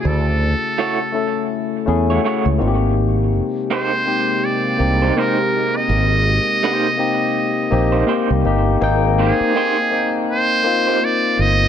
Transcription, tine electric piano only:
Already playing: C#3 A3 C#4 E4 F#4 G#4
1.12 A3 C#4 E4 A4
1.86 A3 C#4 E4 G#4
2.58 A#3 C4 D#4 F4
2.67 G4
4.05 A#3 C4 D#4 G4
4.78 A#3 C4 D#4 G4
6.97 A#3 C4 D#4 G4
7.71 A#3 C4 D#4 G4
8.44 A#3 C4 D#4 G4
8.81 A#3 C4 D#4 G5
9.91 A#3 C4 D#4 G5
10.64 A#3 C4 D#4 F4

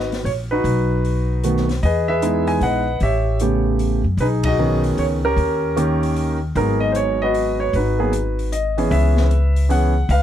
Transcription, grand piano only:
Already playing: F#4 B4
0.25 C#5
0.51 D#4 F#4 B4
1.44 D#3 A3 B3 F#4
1.83 G#4 B4 D#5
2.08 G#4 B4 E5
2.22 G#3 B3 D#4 E4
2.48 G#5
2.63 B4 D#5 F#5
3.03 G4 C#5 E5
3.41 C#3 A3 B3 G4
4.20 D#4 G#4 B4
4.45 F#4 G#4 D#5
4.59 D#3 B3 C#4 G#4
4.99 C#5
5.25 C#4 G4 A#4
5.77 D#3 A#3 C#4 G4
6.55 F#3 G#3 B3 D#4 F#4 G#4 A#4
6.80 D#5
6.92 C5
6.96 C#5
7.22 F#4 B4 D#5
7.60 C#5
7.75 D#4 F#4 B4
7.99 F#3 A#3 B3 G#4
8.52 D#5
8.78 E3 B3 C#4 G#4
8.91 B4 E5
9.69 E3 B3 C#4 G#4 F#5
10.11 B4 F5

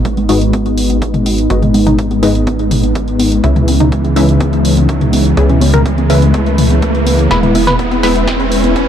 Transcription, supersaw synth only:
Already playing: G#2 G#3 B3 D#4 B4 D#5
0.29 G#2 G#3 B3 D#4 B4 D#5
1.50 G#2 G#3 B3 D#4 B4 D#5
2.23 G#2 G#3 B3 D#4 B4 D#5
3.44 C#3 G#3 C#4 E4 B4 E5
4.16 C#3 G#3 C#4 E4 B4 E5
5.37 C#3 G#3 C#4 E4 B4 E5
6.10 C#3 G#3 C#4 E4 B4 E5
7.31 G#3 B3 E4 B4 E5
8.03 G#3 B3 E4 B4 E5

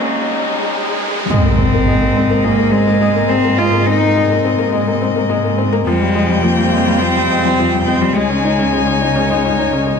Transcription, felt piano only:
Already playing: G#3 D#4
0.00 C#4
1.31 G#3
1.45 A#3
1.59 C4
1.74 A#3
1.88 G#3
2.02 A#3
2.16 C4
2.30 A#3
2.44 G#3
2.59 A#3
2.73 C4
2.87 A#3
3.01 G#3
3.15 A#3
3.30 C4
3.44 A#3
3.58 G#3
3.73 A#3
3.87 C4
4.01 A#3
4.16 G#3
4.30 A#3
4.45 C4
4.59 A#3
4.72 G#3
4.87 A#3
5.02 C4
5.16 A#3
5.30 G#3
5.44 A#3
5.58 C4
5.73 A#3
5.87 F3
6.01 G3
6.15 G#3
6.30 G3
6.43 F3
6.58 G3
6.72 G#3
6.87 G3
7.01 F3
7.16 G3
7.30 G#3
7.45 G3
7.59 F3
7.74 G3
7.88 G#3
8.01 G3
8.15 G#3
8.30 C#4
8.44 D#4
8.59 C#4
8.73 G#3
8.87 C#4
9.01 D#4
9.16 C#4
9.30 G#3
9.45 C#4
9.59 D#4
9.73 C#4
9.87 G#3

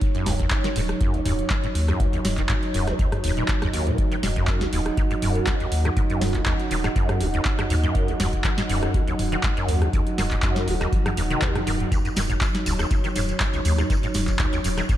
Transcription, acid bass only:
0.15 F#2
0.26 C#2
0.39 D#2
0.64 D#3
0.76 G#2
1.01 F#2
1.14 C#2
1.25 D#2
1.50 D#3
1.63 G#2
1.88 F#2
2.00 C#2
2.13 D#2
2.38 D#3
2.50 G#2
2.74 F#2
2.88 C#2
2.99 D#2
3.24 D#2
3.37 A#2
3.62 D#2
3.73 D#2
3.87 A#2
4.12 D#3
4.23 G#2
4.36 F#2
4.61 C#2
4.73 D#2
4.98 D#3
5.11 G#2
5.22 F#2
5.47 C#2
5.60 D#2
5.85 D#3
5.97 G#2
6.10 F#2
6.35 C#2
6.46 D#2
6.71 D#3
6.84 G#2
6.96 F#2
7.21 C#2
7.34 D#2
7.59 D#3
7.70 G#2
7.83 F#2
8.08 C#2
8.20 D#2
8.45 D#3
8.58 G#2
8.69 F#2
8.94 C#2
9.07 D#2
9.32 D#3
9.44 G#2
9.57 F#2
9.82 C#2
9.93 D#2
10.18 D#3
10.31 G#2
10.43 F#2
10.68 C#2
10.81 D#2
11.06 D#3
11.17 D#2
11.30 D#3
11.42 D#2
11.55 F#3
11.67 D#3
11.92 D#2
12.05 F#2
12.16 D#3
12.29 G#2
12.66 C#2
12.79 D#2
12.91 F#2
13.04 D#3
13.16 G#2
13.54 C#2
13.65 D#2
13.78 F#2
13.90 D#3
14.03 G#2
14.39 C#2
14.53 D#2
14.64 F#2
14.77 D#3
14.89 G#2

